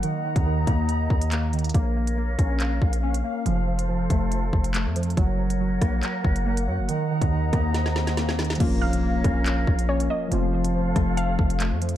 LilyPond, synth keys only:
\new Staff \with { instrumentName = "Synth keys" } { \time 4/4 \key bes \minor \tempo 4 = 140 ees8 ees8 ees8 bes4. bes8 ees8 | bes8 bes8 bes8 des'4. des'8 bes8 | f8 f8 f8 a4. a8 f8 | ges8 ges8 ges8 bes4. bes8 ges8 |
ees8 ees8 ees8 bes4. bes8 ees8 | bes8 bes8 bes8 des'4. des'8 bes8 | f8 f8 f8 a4. a8 f8 | }